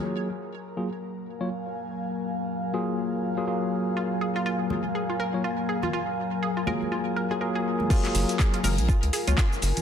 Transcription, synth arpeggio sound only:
X:1
M:4/4
L:1/16
Q:"Swing 16ths" 1/4=122
K:F#
V:1 name="Synth arpeggio sound"
z16 | z16 | E z G E E z3 G E A z E z G E | E z3 G E A z E z A G A G z2 |
E z3 G E A z E z G E E z3 |]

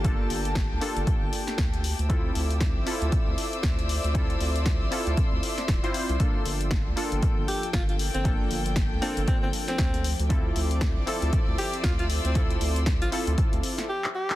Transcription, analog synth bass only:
X:1
M:4/4
L:1/16
Q:"Swing 16ths" 1/4=117
K:Gdor
V:1 name="Analog synth bass" clef=bass
G,,,2 G,,,3 D,, z G,,, z G,,, z2 D,,3 D,,- | D,,2 D,,3 A,,, z D,, z D,, z2 D,,3 D,,- | D,,2 D,,3 A,,, z D,, z D,, z2 D,,, z2 C,, | z2 G,,,3 D,, z G,,, z G,,, z2 G,,,3 G,,,- |
G,,,2 G,,,3 D,, z G,,, z G,,, z2 D,,3 D,,- | D,,2 D,,3 A,,, z D,, z D,, z2 D,,3 D,,- | D,,2 D,,3 A,,, z D,, z D,, z6 |]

